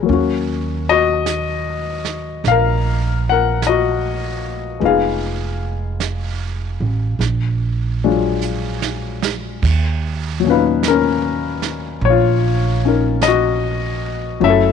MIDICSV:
0, 0, Header, 1, 4, 480
1, 0, Start_track
1, 0, Key_signature, -6, "minor"
1, 0, Tempo, 1183432
1, 30, Time_signature, 4, 2, 24, 8
1, 2430, Tempo, 1207243
1, 4350, Tempo, 1192843
1, 5919, End_track
2, 0, Start_track
2, 0, Title_t, "Grand piano"
2, 0, Program_c, 0, 0
2, 0, Control_c, 0, 64, 127
2, 0, Note_on_c, 0, 68, 42
2, 10, Note_on_c, 0, 54, 41
2, 24, Note_on_c, 0, 58, 36
2, 37, Control_c, 0, 64, 0
2, 38, Note_on_c, 0, 61, 40
2, 53, Note_on_c, 0, 66, 44
2, 78, Note_off_c, 0, 68, 0
2, 114, Control_c, 0, 64, 127
2, 362, Note_off_c, 0, 66, 0
2, 362, Note_on_c, 0, 75, 91
2, 368, Note_on_c, 0, 66, 58
2, 823, Note_off_c, 0, 75, 0
2, 826, Note_off_c, 0, 66, 0
2, 1005, Note_on_c, 0, 77, 83
2, 1020, Note_on_c, 0, 70, 64
2, 1315, Note_off_c, 0, 70, 0
2, 1334, Note_off_c, 0, 77, 0
2, 1336, Note_on_c, 0, 78, 72
2, 1346, Note_on_c, 0, 70, 55
2, 1471, Note_off_c, 0, 78, 0
2, 1476, Note_off_c, 0, 70, 0
2, 1487, Note_on_c, 0, 75, 68
2, 1497, Note_on_c, 0, 66, 53
2, 1942, Note_off_c, 0, 54, 0
2, 1943, Note_off_c, 0, 75, 0
2, 1946, Note_on_c, 0, 56, 42
2, 1948, Note_off_c, 0, 58, 0
2, 1948, Note_off_c, 0, 66, 0
2, 1951, Note_on_c, 0, 59, 36
2, 1955, Note_off_c, 0, 61, 0
2, 1957, Control_c, 0, 64, 0
2, 1961, Note_on_c, 0, 63, 38
2, 1966, Note_on_c, 0, 65, 45
2, 1969, Note_on_c, 0, 77, 67
2, 1977, Note_on_c, 0, 68, 50
2, 2017, Control_c, 0, 64, 127
2, 2906, Note_off_c, 0, 56, 0
2, 2909, Note_off_c, 0, 59, 0
2, 2913, Note_off_c, 0, 63, 0
2, 2914, Control_c, 0, 64, 0
2, 2916, Note_off_c, 0, 65, 0
2, 2982, Control_c, 0, 64, 127
2, 3245, Note_on_c, 0, 62, 39
2, 3246, Note_on_c, 0, 54, 43
2, 3246, Note_on_c, 0, 56, 41
2, 3250, Note_on_c, 0, 65, 45
2, 3712, Note_off_c, 0, 77, 0
2, 3717, Note_off_c, 0, 68, 0
2, 3879, Note_off_c, 0, 54, 0
2, 3879, Note_off_c, 0, 56, 0
2, 3879, Note_off_c, 0, 62, 0
2, 3879, Control_c, 0, 64, 0
2, 3881, Note_off_c, 0, 65, 0
2, 3947, Control_c, 0, 64, 127
2, 4182, Note_on_c, 0, 54, 43
2, 4197, Note_on_c, 0, 46, 40
2, 4213, Note_on_c, 0, 61, 39
2, 4221, Note_on_c, 0, 71, 58
2, 4224, Note_on_c, 0, 77, 48
2, 4228, Note_on_c, 0, 63, 47
2, 4357, Note_off_c, 0, 63, 0
2, 4368, Note_off_c, 0, 71, 0
2, 4374, Note_on_c, 0, 70, 67
2, 4377, Note_off_c, 0, 61, 0
2, 4383, Note_on_c, 0, 61, 49
2, 4834, Note_off_c, 0, 61, 0
2, 4845, Note_on_c, 0, 73, 76
2, 4859, Note_off_c, 0, 70, 0
2, 4866, Note_on_c, 0, 65, 61
2, 5167, Note_on_c, 0, 61, 37
2, 5173, Note_on_c, 0, 63, 36
2, 5179, Note_on_c, 0, 70, 44
2, 5314, Note_off_c, 0, 65, 0
2, 5318, Note_on_c, 0, 75, 73
2, 5334, Note_off_c, 0, 73, 0
2, 5340, Note_on_c, 0, 66, 59
2, 5778, Note_off_c, 0, 75, 0
2, 5784, Note_off_c, 0, 54, 0
2, 5789, Note_off_c, 0, 66, 0
2, 5791, Note_off_c, 0, 46, 0
2, 5791, Note_on_c, 0, 54, 47
2, 5796, Note_off_c, 0, 61, 0
2, 5798, Control_c, 0, 64, 0
2, 5799, Note_off_c, 0, 63, 0
2, 5800, Note_on_c, 0, 57, 40
2, 5801, Note_off_c, 0, 70, 0
2, 5803, Note_on_c, 0, 61, 42
2, 5805, Note_off_c, 0, 77, 0
2, 5807, Note_on_c, 0, 76, 82
2, 5810, Note_on_c, 0, 64, 52
2, 5830, Note_on_c, 0, 69, 66
2, 5864, Control_c, 0, 64, 127
2, 5919, Note_off_c, 0, 54, 0
2, 5919, Note_off_c, 0, 57, 0
2, 5919, Note_off_c, 0, 61, 0
2, 5919, Note_off_c, 0, 64, 0
2, 5919, Note_off_c, 0, 69, 0
2, 5919, Note_off_c, 0, 76, 0
2, 5919, End_track
3, 0, Start_track
3, 0, Title_t, "Upright bass"
3, 0, Program_c, 1, 32
3, 36, Note_on_c, 1, 39, 63
3, 977, Note_off_c, 1, 39, 0
3, 989, Note_on_c, 1, 34, 66
3, 1935, Note_off_c, 1, 34, 0
3, 1952, Note_on_c, 1, 29, 63
3, 2739, Note_off_c, 1, 29, 0
3, 2753, Note_on_c, 1, 33, 54
3, 2897, Note_off_c, 1, 33, 0
3, 2906, Note_on_c, 1, 34, 61
3, 3857, Note_off_c, 1, 34, 0
3, 3875, Note_on_c, 1, 39, 72
3, 4818, Note_off_c, 1, 39, 0
3, 4830, Note_on_c, 1, 34, 70
3, 5774, Note_off_c, 1, 34, 0
3, 5795, Note_on_c, 1, 30, 72
3, 5919, Note_off_c, 1, 30, 0
3, 5919, End_track
4, 0, Start_track
4, 0, Title_t, "Drums"
4, 28, Note_on_c, 9, 25, 27
4, 512, Note_off_c, 9, 25, 0
4, 512, Note_on_c, 9, 25, 28
4, 512, Note_on_c, 9, 38, 34
4, 512, Note_on_c, 9, 44, 44
4, 552, Note_off_c, 9, 38, 0
4, 552, Note_off_c, 9, 44, 0
4, 830, Note_on_c, 9, 38, 23
4, 871, Note_off_c, 9, 38, 0
4, 991, Note_off_c, 9, 25, 0
4, 991, Note_on_c, 9, 25, 27
4, 991, Note_on_c, 9, 38, 23
4, 1032, Note_off_c, 9, 38, 0
4, 1469, Note_off_c, 9, 25, 0
4, 1469, Note_on_c, 9, 25, 32
4, 1469, Note_on_c, 9, 38, 33
4, 1469, Note_on_c, 9, 44, 40
4, 1510, Note_off_c, 9, 38, 0
4, 1510, Note_off_c, 9, 44, 0
4, 1951, Note_off_c, 9, 25, 0
4, 1951, Note_on_c, 9, 25, 26
4, 2434, Note_off_c, 9, 25, 0
4, 2434, Note_on_c, 9, 25, 29
4, 2434, Note_on_c, 9, 38, 34
4, 2434, Note_on_c, 9, 44, 44
4, 2474, Note_off_c, 9, 38, 0
4, 2474, Note_off_c, 9, 44, 0
4, 2913, Note_off_c, 9, 25, 0
4, 2913, Note_on_c, 9, 25, 31
4, 2913, Note_on_c, 9, 38, 23
4, 2953, Note_off_c, 9, 38, 0
4, 3393, Note_on_c, 9, 44, 35
4, 3433, Note_off_c, 9, 44, 0
4, 3555, Note_on_c, 9, 38, 39
4, 3595, Note_off_c, 9, 38, 0
4, 3716, Note_on_c, 9, 38, 54
4, 3756, Note_off_c, 9, 38, 0
4, 3876, Note_on_c, 9, 36, 58
4, 3878, Note_off_c, 9, 25, 0
4, 3878, Note_on_c, 9, 25, 30
4, 3878, Note_on_c, 9, 38, 26
4, 3878, Note_on_c, 9, 49, 56
4, 3916, Note_off_c, 9, 36, 0
4, 3918, Note_off_c, 9, 38, 0
4, 3918, Note_off_c, 9, 49, 0
4, 4354, Note_off_c, 9, 25, 0
4, 4354, Note_on_c, 9, 25, 31
4, 4354, Note_on_c, 9, 38, 43
4, 4354, Note_on_c, 9, 44, 56
4, 4394, Note_off_c, 9, 38, 0
4, 4394, Note_off_c, 9, 44, 0
4, 4673, Note_on_c, 9, 38, 25
4, 4713, Note_off_c, 9, 38, 0
4, 4831, Note_off_c, 9, 25, 0
4, 4831, Note_on_c, 9, 25, 38
4, 5314, Note_off_c, 9, 25, 0
4, 5314, Note_on_c, 9, 25, 33
4, 5314, Note_on_c, 9, 38, 39
4, 5314, Note_on_c, 9, 44, 50
4, 5354, Note_off_c, 9, 38, 0
4, 5354, Note_off_c, 9, 44, 0
4, 5790, Note_off_c, 9, 25, 0
4, 5790, Note_on_c, 9, 25, 38
4, 5919, Note_off_c, 9, 25, 0
4, 5919, End_track
0, 0, End_of_file